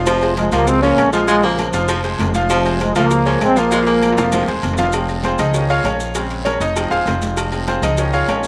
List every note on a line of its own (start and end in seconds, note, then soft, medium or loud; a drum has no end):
0.00 0.47 F1 loud
0.00 0.17 F3 medium
0.00 0.17 F4 medium
0.00 0.17 F5 medium
0.06 0.36 C3 medium
0.06 0.31 F3 loud
0.06 0.35 F3 loud
0.06 cowbell loud
0.06 high conga soft
0.06 low agogo loud
0.06 long guiro medium
0.06 maracas loud
0.21 0.47 G#3 medium
0.21 0.47 G#4 medium
0.21 0.47 C5 medium
0.21 high conga soft
0.21 low agogo medium
0.21 maracas soft
0.37 0.52 F3 medium
0.37 0.51 G#3 loud
0.37 cowbell medium
0.37 high conga loud
0.37 low timbale medium
0.37 low agogo medium
0.37 short guiro medium
0.37 maracas soft
0.52 0.94 C#2 loud
0.52 0.77 F3 medium
0.52 0.69 F3 medium
0.52 0.68 G3 medium
0.52 0.68 A#3 loud
0.52 0.77 F4 medium
0.52 0.78 F5 medium
0.52 cowbell medium
0.52 high conga loud
0.52 low conga medium
0.52 low agogo loud
0.52 short guiro medium
0.52 maracas medium
0.67 0.83 G#3 medium
0.67 0.83 C4 loud
0.67 cowbell loud
0.67 high conga soft
0.67 low conga medium
0.67 long guiro medium
0.67 maracas medium
0.82 0.99 F3 medium
0.82 1.07 G#3 medium
0.82 1.11 A#3 medium
0.82 1.11 C#4 loud
0.82 1.08 G#4 medium
0.82 1.08 C#5 medium
0.82 high conga soft
0.82 low agogo medium
0.82 maracas soft
0.97 1.68 A#1 loud
0.97 cowbell medium
0.97 high conga medium
0.97 low timbale medium
0.97 low agogo loud
0.97 short guiro medium
0.97 maracas soft
1.13 1.26 F3 loud
1.13 1.21 F3 medium
1.13 1.28 F3 medium
1.13 1.27 G#3 medium
1.13 1.26 F4 loud
1.13 1.26 F5 medium
1.13 high conga soft
1.13 short guiro medium
1.13 maracas medium
1.28 1.41 F3 medium
1.28 1.43 F3 medium
1.28 1.36 G#3 loud
1.28 1.43 G#3 loud
1.28 1.41 F4 medium
1.28 1.41 F5 medium
1.28 cowbell loud
1.28 high conga soft
1.28 low agogo medium
1.28 long guiro medium
1.28 maracas medium
1.42 1.90 C#3 medium
1.42 2.05 F3 medium
1.42 1.68 G#3 medium
1.42 1.67 A#3 medium
1.42 1.68 G#4 medium
1.42 1.68 A#4 medium
1.42 cowbell medium
1.42 high conga soft
1.42 maracas soft
1.58 cowbell medium
1.58 high conga medium
1.58 low timbale medium
1.58 low agogo loud
1.58 short guiro medium
1.58 maracas soft
1.73 2.16 F1 loud
1.73 1.99 F3 loud
1.73 1.99 F4 medium
1.73 1.99 F5 medium
1.73 cowbell medium
1.73 short guiro medium
1.73 maracas medium
1.88 2.23 F3 medium
1.88 cowbell loud
1.88 high conga soft
1.88 low agogo loud
1.88 long guiro medium
1.88 maracas medium
2.04 2.29 G#3 medium
2.04 2.29 G#4 medium
2.04 2.29 C5 medium
2.04 cowbell medium
2.04 high conga soft
2.04 maracas soft
2.19 2.90 F1 loud
2.19 cowbell medium
2.19 high conga medium
2.19 low timbale medium
2.19 low agogo medium
2.19 short guiro medium
2.19 maracas soft
2.34 2.60 F3 medium
2.34 2.60 F4 medium
2.34 2.60 F5 medium
2.34 cowbell medium
2.34 high conga medium
2.34 short guiro medium
2.34 maracas medium
2.50 2.79 C3 medium
2.50 2.74 F3 loud
2.50 2.79 F3 loud
2.50 cowbell loud
2.50 high conga soft
2.50 low agogo loud
2.50 long guiro medium
2.50 maracas medium
2.65 2.90 G#3 medium
2.65 2.90 G#4 medium
2.65 2.90 C5 medium
2.65 high conga soft
2.65 low agogo medium
2.65 maracas soft
2.80 2.96 F3 medium
2.80 2.97 G#3 loud
2.80 cowbell medium
2.80 high conga medium
2.80 low timbale medium
2.80 low agogo medium
2.80 short guiro medium
2.80 maracas soft
2.95 3.38 C#2 loud
2.95 3.20 F3 medium
2.95 3.12 F3 medium
2.95 3.39 F3 medium
2.95 3.39 A#3 loud
2.95 3.21 F4 loud
2.95 3.21 F5 medium
2.95 cowbell medium
2.95 high conga loud
2.95 low conga medium
2.95 low agogo loud
2.95 short guiro medium
2.95 maracas medium
3.11 cowbell loud
3.11 high conga soft
3.11 long guiro medium
3.11 maracas medium
3.26 3.42 F3 medium
3.26 3.51 G#3 medium
3.26 3.51 G#4 medium
3.26 3.51 C#5 medium
3.26 low agogo medium
3.26 maracas soft
3.41 4.12 A#1 loud
3.41 3.57 G#3 medium
3.41 3.58 C4 loud
3.41 cowbell medium
3.41 high conga medium
3.41 low timbale medium
3.41 low agogo loud
3.41 short guiro medium
3.41 maracas soft
3.56 3.69 F3 medium
3.56 3.65 F3 medium
3.56 4.49 F3 medium
3.56 4.49 A#3 loud
3.56 3.69 F4 medium
3.56 3.69 F5 medium
3.56 high conga soft
3.56 short guiro medium
3.56 maracas medium
3.71 3.84 F3 medium
3.71 3.80 G#3 medium
3.71 3.84 F4 medium
3.71 3.84 F5 medium
3.71 cowbell loud
3.71 high conga soft
3.71 high timbale medium
3.71 low agogo medium
3.71 long guiro medium
3.71 maracas medium
3.83 4.11 G#3 medium
3.83 4.12 G#4 medium
3.83 4.12 A#4 medium
3.83 high timbale medium
3.87 4.11 A#3 medium
3.87 cowbell medium
3.87 high conga soft
3.87 maracas soft
4.02 cowbell medium
4.02 high conga loud
4.02 low agogo loud
4.02 short guiro medium
4.02 maracas soft
4.12 high timbale loud
4.17 4.45 F1 loud
4.17 4.42 F3 medium
4.17 4.42 F4 medium
4.17 4.43 F5 medium
4.17 cowbell medium
4.17 high bongo loud
4.17 short guiro medium
4.17 maracas medium
4.23 low timbale medium
4.32 4.68 F3 medium
4.32 cowbell loud
4.32 high bongo medium
4.32 high conga medium
4.32 low timbale medium
4.32 low agogo loud
4.32 long guiro medium
4.32 maracas loud
4.43 low timbale medium
4.47 4.62 D#1 medium
4.47 4.73 G#3 medium
4.47 4.73 G#4 medium
4.47 4.73 C5 medium
4.47 cowbell medium
4.47 low bongo medium
4.47 high conga medium
4.47 maracas soft
4.62 5.34 F1 medium
4.62 cowbell medium
4.62 low bongo medium
4.62 low agogo medium
4.62 short guiro medium
4.62 maracas soft
4.73 low timbale medium
4.77 4.91 F3 medium
4.77 4.91 F4 loud
4.77 4.91 F5 loud
4.77 cowbell medium
4.77 low bongo medium
4.77 low conga loud
4.77 short guiro medium
4.77 maracas medium
4.83 low timbale medium
4.92 5.37 F3 medium
4.92 5.38 G#3 medium
4.92 5.23 C4 medium
4.92 cowbell loud
4.92 high conga soft
4.92 low agogo loud
4.92 long guiro medium
4.92 maracas medium
5.09 high conga soft
5.09 low agogo medium
5.09 maracas soft
5.24 5.39 C4 medium
5.24 5.39 F4 medium
5.24 5.38 G#4 medium
5.24 5.39 C5 medium
5.24 cowbell medium
5.24 high conga medium
5.24 low timbale medium
5.24 low agogo medium
5.24 short guiro medium
5.24 maracas soft
5.38 5.82 C#2 loud
5.38 5.68 D#4 medium
5.38 5.68 G#4 medium
5.38 5.68 D#5 medium
5.38 cowbell medium
5.38 high conga loud
5.38 low conga medium
5.38 low agogo loud
5.38 short guiro medium
5.38 maracas medium
5.54 6.12 D#3 medium
5.54 6.13 F3 medium
5.54 5.84 C#4 medium
5.54 cowbell loud
5.54 high conga soft
5.54 long guiro medium
5.54 maracas medium
5.69 5.84 F4 medium
5.69 5.84 G#4 medium
5.69 5.84 C#5 medium
5.69 5.85 F5 loud
5.69 low agogo medium
5.69 maracas soft
5.84 6.55 A#1 medium
5.84 6.14 C#4 medium
5.84 6.14 F4 medium
5.84 6.14 G#4 medium
5.84 6.13 C#5 medium
5.84 cowbell medium
5.84 high conga medium
5.84 low timbale medium
5.84 low agogo loud
5.84 short guiro medium
5.84 maracas soft
6.00 high conga soft
6.00 short guiro medium
6.00 maracas medium
6.15 6.59 C#3 medium
6.15 6.59 G#3 medium
6.15 6.59 C4 medium
6.15 cowbell loud
6.15 high conga soft
6.15 low agogo medium
6.15 long guiro medium
6.15 maracas medium
6.30 cowbell medium
6.30 high conga soft
6.30 maracas soft
6.45 6.60 C#4 medium
6.45 6.60 G#4 medium
6.45 6.60 A#4 medium
6.45 6.60 C#5 medium
6.45 cowbell medium
6.45 high conga loud
6.45 low timbale medium
6.45 low agogo loud
6.45 short guiro medium
6.45 maracas soft
6.60 6.89 F1 loud
6.60 6.90 D#4 medium
6.60 6.89 D#5 loud
6.60 cowbell medium
6.60 short guiro medium
6.60 maracas medium
6.76 7.50 F3 medium
6.76 7.51 G#3 medium
6.76 7.06 C4 medium
6.76 cowbell loud
6.76 high conga soft
6.76 low agogo loud
6.76 long guiro medium
6.76 maracas medium
6.91 7.05 D#1 medium
6.91 7.06 F4 medium
6.91 7.06 G#4 medium
6.91 7.06 C5 medium
6.91 7.06 F5 loud
6.91 cowbell medium
6.91 high conga soft
6.91 maracas soft
7.06 7.77 F1 medium
7.06 7.36 C4 medium
7.06 7.36 F4 medium
7.06 7.36 G#4 medium
7.06 7.36 C5 medium
7.06 cowbell medium
7.06 high conga medium
7.06 low timbale medium
7.06 low agogo medium
7.06 short guiro medium
7.06 maracas soft
7.22 cowbell medium
7.22 high conga loud
7.22 short guiro medium
7.22 maracas medium
7.37 cowbell loud
7.37 high conga soft
7.37 low agogo loud
7.37 long guiro medium
7.37 maracas medium
7.52 7.66 F3 medium
7.52 7.66 G#3 soft
7.52 7.67 C4 medium
7.52 high conga soft
7.52 low agogo medium
7.52 maracas soft
7.67 7.83 C4 medium
7.67 7.83 F4 medium
7.67 7.82 G#4 medium
7.67 7.83 C5 medium
7.67 cowbell medium
7.67 high conga medium
7.67 low timbale medium
7.67 low agogo medium
7.67 short guiro medium
7.67 maracas soft
7.82 8.25 C#2 loud
7.82 8.12 D#4 medium
7.82 8.12 G#4 medium
7.82 8.11 D#5 medium
7.82 cowbell medium
7.82 high conga loud
7.82 low conga medium
7.82 low agogo loud
7.82 short guiro medium
7.82 maracas medium
7.97 8.47 D#3 medium
7.97 8.47 F3 medium
7.97 8.29 C#4 medium
7.97 cowbell loud
7.97 high conga soft
7.97 long guiro medium
7.97 maracas medium
8.13 8.28 F4 medium
8.13 8.28 G#4 medium
8.13 8.28 C#5 medium
8.13 8.28 F5 loud
8.13 high conga soft
8.13 low agogo medium
8.13 maracas soft
8.28 8.47 A#1 medium
8.28 8.47 C#4 medium
8.28 8.47 F4 medium
8.28 8.47 G#4 medium
8.28 8.47 C#5 medium
8.28 cowbell medium
8.28 high conga medium
8.28 low timbale medium
8.28 low agogo loud
8.28 short guiro medium
8.28 maracas soft
8.43 high conga soft
8.43 short guiro medium
8.43 maracas medium